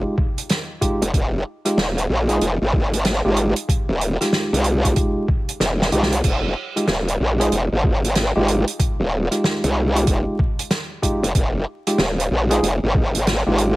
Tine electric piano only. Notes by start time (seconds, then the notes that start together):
Already playing: G#3 D#4 F4 G4
0.81 G#3 D#4 F4 G4
1.65 G#3 D#4 F4 G4
2.29 G#3 D#4 F4 G#4
3.25 G#3 D#4 F4 G4
4.21 G#3 D#4 F4 G4
4.85 G#3 D#4 F4 G4
5.92 G#3 D#4 F4 G4
6.76 G#3 D#4 F4 G4
7.40 G#3 D#4 F4 G#4
8.36 G#3 D#4 F4 G4
9.31 G#3 D#4 F4 G4
9.95 G#3 D#4 F4 G4
11.03 G#3 D#4 F4 G4
11.87 G#3 D#4 F4 G4
12.51 G#3 D#4 F4 G#4
13.47 G#3 D#4 F4 G4